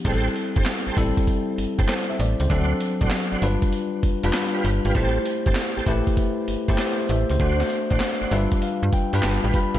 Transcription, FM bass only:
X:1
M:4/4
L:1/16
Q:"Swing 16ths" 1/4=98
K:Am
V:1 name="FM bass" clef=bass
A,,,2 z G,,, z A,,, A,,, z3 G,,, G,,, z2 A,,, ^C,, | D,,2 z A,,, z G,,, G,,, z3 F,,, F,,, z2 G,,, ^G,,, | A,,,2 z G,,, z A,,, A,,, z3 G,,, G,,, z2 A,,, ^C,, | D,,2 z A,,, z G,,, G,,, z2 G,, z G,, G,,, A,,, z B,,, |]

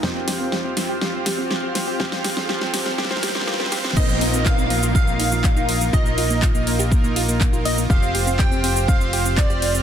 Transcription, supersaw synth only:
X:1
M:4/4
L:1/8
Q:1/4=122
K:Bbmix
V:1 name="Supersaw synth"
[CFGc]3 [CFGc] [CFGc]3 [CFGc] | [CFGc]2 [CFGc]2 [CFGc] [CFGc] [CFGc] [CFGc] | [B,EFB]3 [B,EFB]4- [B,EFB] | [B,EFB]3 [B,EFB]4- [B,EFB] |
[CFGc]3 [CFGc]4- [CFGc] |]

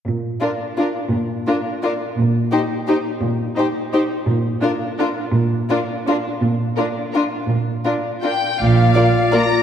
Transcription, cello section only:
X:1
M:3/4
L:1/8
Q:1/4=168
K:Bb
V:1 name="Cello section" clef=bass
B,,2 z4 | B,,2 z4 | B,,2 z4 | B,,2 z4 |
B,,2 z4 | B,,2 z4 | B,,2 z4 | B,,2 z4 |
B,,2 z4 |]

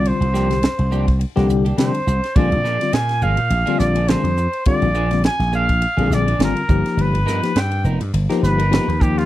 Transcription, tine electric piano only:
X:1
M:4/4
L:1/16
Q:"Swing 16ths" 1/4=104
K:Gphr
V:1 name="Tine electric piano"
[D,G,CF] z2 [D,G,CG] [CD] [CF] z3 [D,G,CG]2 z [D,G,CD] z [CG] z | [D,G,CF] z D [D,G,CF] z [CF] z3 [D,G,CF]2 z [D,G,CD] z [CF] z | [D,G,CF] z [CA] [D,G,CF] z4 z [D,G,CA]2 z [D,G,CF] z [F,^A,^DG]2- | [F,^A,^DG] z [D^A] [F,A,DG] z [DA] z3 [F,A,DG]2 z [F,A,DG] z [F,B,EG]2 |]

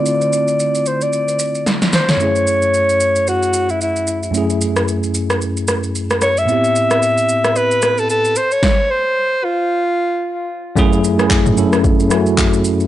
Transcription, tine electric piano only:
X:1
M:4/4
L:1/16
Q:"Swing 16ths" 1/4=112
K:F#m
V:1 name="Tine electric piano"
[D,A,=CE=F]12- [D,A,CEF]2 z2 | [F,,A,CEG]16 | [F,,A,CEG]16 | [A,,B,=CE=G]12- [A,,B,CEG]2 z2 |
z16 | [F,,A,CEG]2 z [F,,A,CEG]2 z [F,,A,CEA]3 z [F,,A,CEF]4- [F,,A,CEF] z |]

